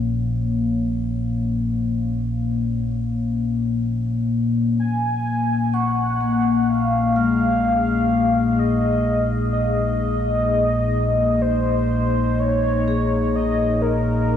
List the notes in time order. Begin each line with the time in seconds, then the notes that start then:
Already playing: A#1 A#2 F3 A#3 C#4 C#5
4.79 A#1 G#5
5.66 D#5
5.74 F#5 C#6
6.21 A#3
6.39 D#4
6.67 G#4 F5
7.16 G#3 F6
8.59 D#5
9.53 D#5
11.42 C5
12.39 C#5
12.88 G#4
12.99 A#4
13.35 D#5
13.82 A#4